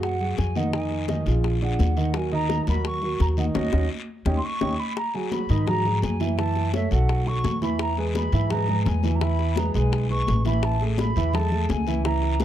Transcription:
Already playing: upright bass F#2, grand piano F#3 F#4 G#4
0.01 flute F#5, high bongo, high conga, long guiro
0.20 grand piano F#3 F#4 G#4, high bongo, high conga
0.38 upright bass F2, flute G#5, high bongo, low bongo, high conga, short guiro
0.56 grand piano D#3 D#4 D#5, flute F#5, high conga, short guiro
0.73 grand piano D#3 D#4 D#5, flute G#5, high bongo, high conga, long guiro
0.91 high bongo, high conga
1.08 grand piano D#3 D#4 D#5, high bongo, high conga, short guiro
1.26 upright bass A#1, grand piano F3 F4 G#4, high bongo, high conga, short guiro
1.44 high bongo, high conga, long guiro
1.62 grand piano F3 D4 G#4, flute F#5, high bongo, high conga
1.79 upright bass D#2, high bongo, low bongo, high conga, short guiro
1.97 grand piano D#3 D#4 D#5, short guiro
2.14 grand piano F#3 F#4 A#4, flute G#5, high bongo, high conga, long guiro
2.32 grand piano D#3 D#4 D#5, flute A#5, high bongo, high conga
2.49 high bongo, high conga, short guiro
2.67 upright bass D#2, grand piano F#3 F#4 A#4, flute B5, high bongo, high conga, short guiro
2.85 flute C#6, high bongo, high conga, long guiro
3.02 grand piano F#3 F#4 A#4, high bongo, high conga
3.20 upright bass D#2, flute A#5, high bongo, low bongo, high conga, short guiro
3.37 grand piano D#3 D#4 D#5, flute F#5, high conga, short guiro
3.54 upright bass D#2, grand piano C#4 D#4 F#4, flute D#5, high bongo, high conga, long guiro
3.72 upright bass D#2, grand piano C#4 D#4 F#4, high bongo, high conga, long guiro
4.25 upright bass D#2, grand piano C#4 D#4 G4, high bongo, high conga, long guiro
4.37 flute C6
4.44 flute C#6
4.61 upright bass D#2, grand piano C#4 D#4 G4, high bongo, high conga
4.79 flute B5
4.97 flute A#5, high bongo, high conga
5.14 grand piano F#3 F#4 G#4, flute G#5, high bongo, high conga
5.31 flute B5, high bongo, high conga, short guiro
5.49 upright bass G#2, grand piano D#3 D#4 D#5, high conga, short guiro
5.66 grand piano F#3 F#4 G#4, flute A#5, high bongo, high conga, low conga, long guiro
5.85 grand piano F#3 F#4 G#4, high bongo, high conga, low conga
6.02 upright bass F#2, flute G#5, high bongo, low bongo, high conga, short guiro
6.20 grand piano E3 E4 E5, high bongo, high conga, short guiro
6.38 grand piano E3 E4 E5, flute A5, high bongo, high conga, long guiro
6.56 high bongo, high conga
6.73 grand piano A3 A4 C#5, flute E5, high bongo, high conga, short guiro
6.91 upright bass B1, grand piano F#3 F#4 A4, flute F#5, high conga, short guiro
7.09 high bongo, high conga, long guiro
7.26 grand piano F#3 F#4 A4, flute C#6, high bongo, high conga
7.44 upright bass E2, high bongo, low bongo, high conga, short guiro
7.62 grand piano E3 E4 E5, flute B5, high bongo, high conga, short guiro
7.79 flute A#5, high bongo, long guiro
7.97 grand piano G#3 G#4 B4, flute G#5, high bongo, high conga
8.15 flute B5, high bongo, high conga, short guiro
8.32 upright bass G#2, grand piano E3 E4 E5, high conga, short guiro
8.50 grand piano G#3 G#4 B4, flute A#5, high bongo, high conga, low conga, long guiro
8.68 grand piano G#3 G#4 B4, high bongo, high conga, low conga
8.85 upright bass E2, flute G#5, high bongo, low bongo, high conga, short guiro
9.03 grand piano E3 E4 E5, high bongo, high conga, short guiro
9.15 flute A#5
9.21 grand piano E3 E4 E5, flute B5, high bongo, high conga, long guiro
9.39 high bongo, high conga
9.56 grand piano G#3 G#4 B4, flute A#5, high bongo, high conga, short guiro
9.74 upright bass B1, grand piano G#3 G#4 B4, flute G#5, high conga, short guiro
9.92 high bongo, high conga, long guiro
10.10 grand piano G#3 G#4 B4, flute C#6, high bongo, high conga
10.27 upright bass A1, high bongo, low bongo, high conga, short guiro
10.45 grand piano E3 E4 E5, flute B5, high bongo, high conga, short guiro
10.63 flute A5, high bongo, long guiro
10.80 grand piano A3 G#4 A4, high bongo, high conga
10.98 flute B5, high bongo, high conga, short guiro
11.16 upright bass E2, grand piano E3 E4 E5, high conga, short guiro
11.33 grand piano G#3 G#4 A4, flute A5, high bongo, high conga, low conga, long guiro
11.51 grand piano A3 G#4 A4, high bongo, high conga, low conga
11.69 upright bass C#2, flute G#5, high bongo, low bongo, high conga, short guiro
11.87 grand piano E3 E4 E5, high bongo, high conga, short guiro
12.05 grand piano E3 E4 E5, flute A#5, high bongo, high conga, long guiro
12.22 high bongo, high conga
12.40 grand piano G#3 G#4 B4, flute E5, high bongo, high conga, short guiro

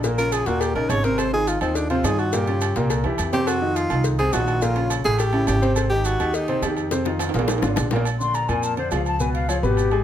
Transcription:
Already playing: upright bass A#1
0.04 grand piano A#2 A#3 A#4, cowbell, maracas
0.18 grand piano C#3 C#4 F4, tenor saxophone A#4, low agogo, maracas
0.32 tenor saxophone G#4, cowbell, low timbale, low agogo, maracas
0.46 upright bass D#2, grand piano A#2 A#3 A#4, tenor saxophone F#4, cowbell, maracas
0.60 tenor saxophone G4, cowbell, low agogo, maracas
0.75 upright bass A#1, grand piano C#3 C#4 D#4, tenor saxophone A#4, low agogo
0.89 upright bass G#1, tenor saxophone C#5, cowbell, low timbale, low agogo, maracas
1.04 grand piano C3 C4 C5, tenor saxophone A#4, cowbell, maracas
1.18 tenor saxophone C5, cowbell, low agogo, maracas
1.33 grand piano D#3 D#4 F4, tenor saxophone G#4
1.47 tenor saxophone F4, cowbell, low timbale, low agogo, maracas
1.61 upright bass D#2, grand piano D#3 D#4 F4, tenor saxophone C4, low agogo, maracas
1.75 tenor saxophone D4, cowbell, maracas
1.90 grand piano C3 C4 C5, tenor saxophone F4, low agogo
2.04 upright bass G2, grand piano D#3 D#4 F4, tenor saxophone G#4, cowbell, low timbale, low agogo, maracas
2.19 tenor saxophone F#4, low agogo, maracas
2.33 grand piano A#2 A#3 A#4, tenor saxophone G4, cowbell, maracas
2.47 grand piano C#3 C#4 F4, low agogo
2.61 cowbell, low timbale, low agogo, maracas
2.76 upright bass C2, grand piano A#2 A#3 A#4, cowbell, maracas
2.90 cowbell, low agogo, maracas
3.04 upright bass E2, grand piano E3 E4 G4, high timbale, low agogo
3.18 upright bass F2, cowbell, low agogo, maracas
3.33 grand piano C3 C4 C5, tenor saxophone G4, cowbell, low timbale, maracas
3.47 tenor saxophone F#4, cowbell, low agogo, maracas
3.61 grand piano D#3 D#4 F4
3.76 tenor saxophone F4, cowbell, low timbale, low agogo, maracas
3.90 upright bass C2, grand piano D#3 D#4 F4, low agogo, maracas
4.04 cowbell, maracas
4.19 grand piano C3 C4 C5, tenor saxophone G#4, low agogo
4.33 upright bass A#1, grand piano D#3 D#4 F4, tenor saxophone F#4, cowbell, low timbale, low agogo, maracas
4.47 low agogo, maracas
4.61 grand piano A#2 A#3 A#4, tenor saxophone F4, cowbell, maracas
4.76 grand piano C#3 C#4 F4, low agogo
4.90 cowbell, low timbale, low agogo, maracas
5.05 upright bass A1, grand piano A2 A3 A4, tenor saxophone G#4, cowbell, maracas
5.18 tenor saxophone G4, cowbell, low agogo, maracas
5.33 grand piano C#3 C#4 E4, low agogo
5.47 upright bass G#1, tenor saxophone G4, cowbell, low timbale, low agogo, maracas
5.62 grand piano C3 C4 C5, cowbell, maracas
5.76 cowbell, low agogo, maracas
5.89 grand piano D#3 D#4 G4, tenor saxophone G4
6.05 tenor saxophone F#4, cowbell, low timbale, low agogo, maracas
6.20 upright bass D#2, grand piano D#3 D#4 G4, low agogo, maracas
6.34 tenor saxophone D#4, cowbell, maracas
6.48 grand piano C3 C4 C5, low agogo
6.62 upright bass F2, grand piano D#3 D#4 G4, cowbell, low timbale, low agogo, maracas
6.77 low agogo, maracas
6.91 grand piano C3 C4 C5, cowbell, high bongo, maracas
7.05 grand piano D#3 D#4 F4, high bongo, low agogo
7.19 cowbell, high timbale, low agogo, maracas
7.29 high timbale
7.34 upright bass A#1, grand piano A#2 A#3 A#4, cowbell, maracas
7.39 low timbale
7.48 cowbell, low bongo, high timbale, low agogo, maracas
7.58 high timbale
7.62 upright bass G#1, grand piano D3 D4 F4, low bongo, low agogo, maracas
7.67 low timbale
7.76 upright bass A#1, cowbell, low bongo, low timbale, low agogo, maracas
7.91 grand piano A#2 A#3 A#4, cowbell, low bongo, maracas
7.96 low timbale
8.05 low agogo, maracas
8.20 grand piano D3 D4 D5, flute C6, maracas
8.35 flute A#5, low timbale, low agogo, maracas
8.49 upright bass F2, grand piano A#2 A#3 A#4, flute G#5, low agogo, maracas
8.63 flute A5, maracas
8.77 grand piano D3 D4 D5, flute C5, low agogo
8.91 upright bass C#2, grand piano F3 F4 F5, flute F5, low timbale, low agogo, maracas
9.06 flute A5, low agogo, maracas
9.20 grand piano B2 B3 B4, flute G#5, maracas
9.34 flute F5, low agogo
9.49 grand piano F3 F4 F5, flute C#5, low timbale, low agogo, maracas
9.62 upright bass G#1, grand piano B2 B3 B4, flute G4, maracas
9.77 low agogo, maracas
9.91 grand piano G#3 G#4 G#5, low agogo

